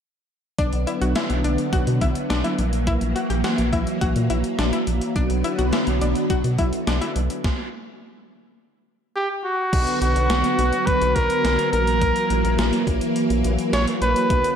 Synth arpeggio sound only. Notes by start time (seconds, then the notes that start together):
0.59 D4
0.87 E4
1.01 F#4
1.16 E4
1.44 D4
1.73 F#4
2.01 E4
2.30 D4
2.44 E4
2.87 E4
3.16 F#4
3.30 G4
3.44 F#4
3.73 E4
4.01 F#4
4.30 E4
4.59 D4
4.73 E4
5.16 D4
5.44 E4
5.59 F#4
5.73 E4
6.01 D4
6.30 F#4
6.59 E4
6.87 D4
7.01 E4